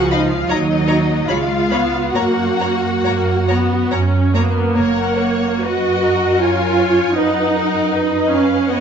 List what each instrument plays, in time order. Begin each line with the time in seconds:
Already playing: double bass section C#2, viola section F3, cello section F#4, violin section F#5
0.11 cello section D#4, violin section D#5 F5 B5
0.32 cello section F4, violin section F5
0.49 double bass section D#2, viola section F#3, cello section D#4, violin section C#5 D#5 A#5
0.87 violin section C#5 A#5
1.28 double bass section C#2, viola section G#3, cello section F4, violin section C#5 F5 B5
1.71 viola section B3, violin section C#5 B5
2.15 double bass section F#2, viola section A#3, cello section F#4, violin section C#5 F#5 A#5
2.59 violin section C#5 A#5
3.04 double bass section F#2, viola section A#3, violin section C#5 A#5
3.49 viola section B3, violin section C#5 A#5
3.91 double bass section F#2, viola section C#4, violin section C#5 A#5
4.34 viola section A#3 B3, violin section C#5 A#5
4.75 double bass section F#1, cello section F#2, viola section A#3, violin section A#4 C#5 F#5
5.18 violin section C#5
5.61 viola section F#4, violin section B4 D#5 F#5
6.03 violin section A#4
6.40 viola section F4, violin section A#4 C#5 G#5
6.80 violin section C#5
7.17 viola section D#4, violin section B4 F#5
7.57 violin section A#4
7.94 violin section B4 D#5
8.31 viola section C#4, violin section F5
8.69 viola section B3, violin section C#5 D#5 F#5